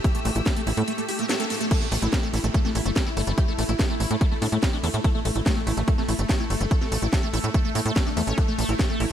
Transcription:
Already playing: A3 G4 E6
0.04 A3 G4, kick, closed hi-hat, ride
0.15 A3, closed hi-hat
0.25 A1 A3, open hi-hat, ride
0.36 A1 A3 E4, closed hi-hat
0.46 A3, kick, snare, closed hi-hat, ride
0.56 A3, closed hi-hat
0.67 A1 A3 E4, open hi-hat, ride
0.77 A2 A3, closed hi-hat
0.88 A3, closed hi-hat, ride
0.98 A3, closed hi-hat
1.09 E4 G4, open hi-hat, ride
1.19 A3 A#3, closed hi-hat
1.29 A3 A#3, snare, closed hi-hat, ride
1.40 A3 A4, closed hi-hat
1.50 A3, open hi-hat, ride
1.61 A3, closed hi-hat
1.71 A3 E4 A4, kick, closed hi-hat, ride, crash
1.81 A3
1.92 A1 A3, open hi-hat, ride
2.02 A1 A3 E4, closed hi-hat
2.13 A3, kick, snare, closed hi-hat, ride
2.23 A3
2.34 A1 A3 E4, open hi-hat, ride
2.44 A1 A3, closed hi-hat
2.54 A3, kick, closed hi-hat, ride
2.65 A3, snare
2.75 A1 A3 E4, open hi-hat, ride
2.86 G1 A3, closed hi-hat
2.96 A3, kick, snare, closed hi-hat, ride
3.06 A3 E4
3.17 G1 A3, open hi-hat, ride
3.27 G1 A3, closed hi-hat
3.38 A3 G4, kick, closed hi-hat, ride
3.48 A3
3.58 A1 A3, open hi-hat, ride
3.69 A1 A3 E4, closed hi-hat
3.79 A3, kick, snare, closed hi-hat, ride
3.90 A3
4.00 A1 A3 E4, open hi-hat, ride
4.11 A2 A3, closed hi-hat
4.21 A3, kick, closed hi-hat, ride
4.31 A3
4.42 A2 A3 D4, open hi-hat, ride
4.52 A2 A3, closed hi-hat
4.63 A3, kick, snare, closed hi-hat, ride
4.73 A3 D4
4.84 E2 A3, open hi-hat, ride
4.94 A2 A3, closed hi-hat
5.04 A3 A4, kick, closed hi-hat, ride
5.15 A3
5.25 A1 A3, open hi-hat, ride
5.36 A1 A3 E4, closed hi-hat
5.46 A3, kick, snare, closed hi-hat, ride
5.56 A3
5.67 A1 A3 E4, open hi-hat, ride
5.77 A1 A3, closed hi-hat
5.88 A3, kick, closed hi-hat, ride
5.98 A3, snare
6.09 A1 A3 E4, open hi-hat, ride
6.19 G1 A3, closed hi-hat
6.29 A3, kick, snare, closed hi-hat, ride
6.40 A3 E4
6.50 G1 A3, open hi-hat, ride
6.61 G1 A3, closed hi-hat
6.71 A3 A4, kick, closed hi-hat, ride
6.81 A3, snare
6.92 A1 A3, open hi-hat, ride
7.02 A1 A3 E4, closed hi-hat
7.13 A3, kick, snare, closed hi-hat, ride
7.23 A3
7.34 A1 A3 E4, open hi-hat, ride
7.44 A2 A3, closed hi-hat
7.54 A3, kick, closed hi-hat, ride
7.65 A3
7.75 A2 A#3 E4, open hi-hat, ride
7.86 A2 A3, closed hi-hat
7.96 G3 A3, kick, snare, closed hi-hat, ride
8.06 A3 D4
8.17 E2 A3, open hi-hat, ride
8.27 A1 A3 C#4, closed hi-hat
8.38 A#3 E4 A4, kick, closed hi-hat, ride
8.48 A3
8.59 A1 A3, open hi-hat, ride
8.69 A1 A#3 E4, closed hi-hat
8.79 A3, kick, snare, closed hi-hat, ride
8.90 A3
9.00 A1 A#3 E4, open hi-hat, ride

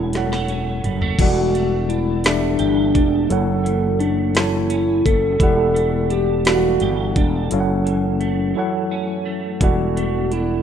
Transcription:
Already playing: E1 F#2 F#3 A3 C#4 E4 A4 C#5 F#5
0.13 F#3 G3 E4 A4 C#5, snare, closed hi-hat
0.18 F#5
0.32 A3, snare
0.48 C#4, closed hi-hat
0.84 F#1 G3, closed hi-hat, mid tom
1.01 A3, floor tom
1.19 E1 E3 G3 E4 F#4 A4 D5 F#5, kick, closed hi-hat, crash
1.54 A3, closed hi-hat
1.89 D4 E4, closed hi-hat
2.24 E3 A3 D4 E4 G4 A4 D5 E5, snare, closed hi-hat
2.59 G1 G4, closed hi-hat
2.94 E1 D4, kick, closed hi-hat
3.29 F#1 F#2 F#3 E4 A4 C#5 F#5, closed hi-hat
3.64 E3, closed hi-hat
4.00 A3 D4, closed hi-hat
4.34 E3 F#3 E4 A4 C#5 A5, snare, closed hi-hat
4.70 C#4, closed hi-hat
5.05 F#1 A3 A4, kick, closed hi-hat
5.39 E1 E3 E4 G4 A4 D5 F#5, kick, closed hi-hat
5.74 A3, closed hi-hat
6.10 D4 G4, closed hi-hat
6.45 E3 G3 A3 E4 F#4 A4 D5 F5, snare, closed hi-hat
6.55 F#5
6.80 G1 G4, closed hi-hat
7.16 E1 D4, kick, closed hi-hat
7.50 F#1 F#2 F#3 C#4 E4 A4 C#5 F5, closed hi-hat
7.60 F#5
7.86 E3, closed hi-hat
8.20 A3, closed hi-hat
8.55 E3 F#3 E4 A4 C#5 F#5
8.91 C#4
9.25 A3
9.61 E1 E3 E4 F#4 A4 D5 F#5, kick, closed hi-hat
9.68 G3
9.97 A3, closed hi-hat
10.31 D4 E4, closed hi-hat

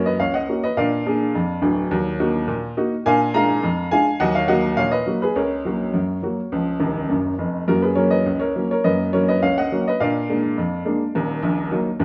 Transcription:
Already playing: F#2 A#3 C#4 F#4 A#4 B4 C#5 D#5
0.06 B4 D#5
0.20 C#2 C#5 F5
0.34 D#5 F#5
0.49 A#3 C#4 F#4
0.64 B4 D#5
0.77 A#2 D4 D5 F5
1.06 A#3 D4 G#4
1.35 F2
1.62 D1 D2
1.91 D#2 F#3
2.19 A#3 D#4 F#4
2.48 A#2
2.77 A#3 D#4 F#4
3.06 A#2 D4 F5 G#5
3.34 G#3 D4 F4 F5 A#5
3.63 F2
3.91 G#3 D4 F4 F5 G#5
4.20 D#2 F#3 D#5 F#5
4.35 C#5 F5
4.48 F#3 A#3 F#4 D#5 F#5
4.77 A#2 C#5 F5
4.91 B4 D#5
5.06 F#3 A#3 F#4
5.22 G#4 B4
5.36 C#2 A#4 C#5
5.65 F#3 A#3 F#4
5.94 F#2
6.23 F#3 A#3 F#4
6.52 C#2 F3
6.80 D#1 D#2
7.10 F#1 F#2
7.38 F1 F2
7.68 F#2 A#3 F#4 A#4
7.82 G#4 B4
7.96 F#3 A#3 C#4 A#4 C#5
8.11 B4 D#5
8.26 C#2
8.40 A#4 C#5
8.56 F#3 A#3 C#4
8.71 A#4 C#5
8.84 F#2 A#3 B4 D#5
9.13 F#3 A#3 C#4 A#4 C#5
9.28 B4 D#5
9.43 C#2 C#5 F5
9.58 D#5 F#5
9.72 F#3 A#3 C#4
9.88 B4 D#5
10.00 A#2 D4 D5 F5
10.29 G#3 A#3 D4
10.58 F2
10.85 G#3 A#3 D4
11.15 D#1 D#2
11.43 A#1
11.71 F#3 A#3 D#4
12.00 D#1 D#2

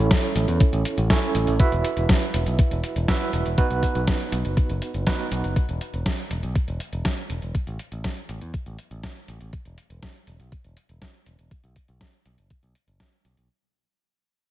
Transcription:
Already playing: C#4 E4 A4 C#5
0.11 kick, snare, closed hi-hat, cabasa
0.23 closed hi-hat, cabasa
0.35 A1, closed hi-hat, cabasa
0.48 E2, closed hi-hat, cabasa
0.60 kick, closed hi-hat, cabasa
0.73 A1, closed hi-hat, cabasa
0.85 closed hi-hat, cabasa
0.98 A1, closed hi-hat, cabasa
1.10 C#4 E4 A4 C#5, kick, snare, closed hi-hat, cabasa
1.22 closed hi-hat, cabasa
1.35 A1, closed hi-hat, cabasa
1.47 A1, closed hi-hat, cabasa
1.60 E4 F#4 B4 E5, kick, closed hi-hat, cabasa
1.72 E1, closed hi-hat, cabasa
1.84 closed hi-hat, cabasa
1.97 E1, closed hi-hat, cabasa
2.09 kick, snare, closed hi-hat, cabasa
2.22 closed hi-hat, cabasa
2.34 E1, closed hi-hat, cabasa
2.46 B1, closed hi-hat, cabasa
2.59 kick, closed hi-hat, cabasa
2.71 E1, closed hi-hat, cabasa
2.84 closed hi-hat, cabasa
2.96 E1, closed hi-hat, cabasa
3.08 E4 F#4 B4 E5, kick, snare, closed hi-hat, cabasa
3.21 closed hi-hat, cabasa
3.33 E1, closed hi-hat, cabasa
3.45 E1, closed hi-hat, cabasa
3.58 B3 D#4 F#4 B4, kick, closed hi-hat, cabasa
3.70 B1, closed hi-hat, cabasa
3.83 kick, closed hi-hat, cabasa
3.95 B1, closed hi-hat, cabasa
4.07 kick, snare, closed hi-hat, cabasa
4.20 closed hi-hat, cabasa
4.32 B1, closed hi-hat, cabasa
4.45 F#1, closed hi-hat, cabasa
4.57 kick, closed hi-hat, cabasa
4.69 F#1, closed hi-hat, cabasa
4.82 closed hi-hat, cabasa
4.94 F#1, closed hi-hat, cabasa
5.07 B3 D#4 F#4 B4, kick, snare, closed hi-hat, cabasa
5.19 closed hi-hat, cabasa
5.32 B1, closed hi-hat, cabasa
5.44 F#1, closed hi-hat, cabasa
5.56 kick, closed hi-hat
5.69 E1, closed hi-hat
5.81 closed hi-hat
5.94 E1, closed hi-hat
6.06 kick, snare, closed hi-hat
6.18 closed hi-hat
6.31 E1, closed hi-hat
6.43 B1, closed hi-hat
6.55 kick, closed hi-hat
6.68 E1, closed hi-hat
6.80 closed hi-hat
6.93 E1, closed hi-hat
7.05 kick, snare, closed hi-hat
7.17 closed hi-hat
7.30 E1, closed hi-hat
7.42 E1, closed hi-hat
7.55 kick, closed hi-hat
7.67 A1, closed hi-hat
7.79 closed hi-hat
7.92 A1, closed hi-hat
8.04 kick, snare, closed hi-hat
8.17 closed hi-hat
8.29 A1, closed hi-hat
8.41 E2, closed hi-hat
8.54 kick, closed hi-hat
8.66 A1, closed hi-hat
8.79 closed hi-hat
8.91 A1, closed hi-hat
9.03 kick, snare, closed hi-hat
9.16 closed hi-hat
9.28 A1, closed hi-hat
9.41 A1, closed hi-hat
9.53 kick, closed hi-hat
9.65 E1, closed hi-hat
9.78 closed hi-hat
9.90 E1, closed hi-hat
10.03 kick, snare, closed hi-hat
10.15 closed hi-hat
10.27 E1, closed hi-hat
10.40 B1, closed hi-hat
10.52 kick, closed hi-hat
10.64 E1, closed hi-hat
10.77 closed hi-hat
10.89 E1, closed hi-hat
11.02 kick, snare, closed hi-hat
11.14 closed hi-hat
11.26 E1, closed hi-hat
11.39 E1, closed hi-hat
11.51 kick, closed hi-hat
11.64 B1, closed hi-hat
11.76 kick, closed hi-hat
11.88 B1, closed hi-hat
12.01 kick, snare, closed hi-hat
12.13 closed hi-hat
12.26 B1, closed hi-hat
12.38 F#1, closed hi-hat
12.50 kick, closed hi-hat
12.63 B1, closed hi-hat
12.75 closed hi-hat
12.88 F#1, closed hi-hat
13.00 kick, snare, closed hi-hat
13.12 closed hi-hat
13.25 B1, closed hi-hat
13.37 B1, closed hi-hat

